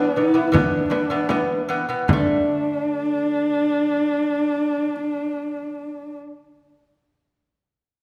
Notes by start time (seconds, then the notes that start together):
Already playing: D4
0.16 E3 B3 E4, frame drum
0.34 E3 B3
0.47 E4
0.52 E3 B3, frame drum
0.56 D4
0.90 E3 B3, frame drum
1.10 E3 B3
1.29 E3 B3, frame drum
1.69 E3 B3, frame drum
1.89 E3 B3
2.08 D3 D4, frame drum
2.13 A3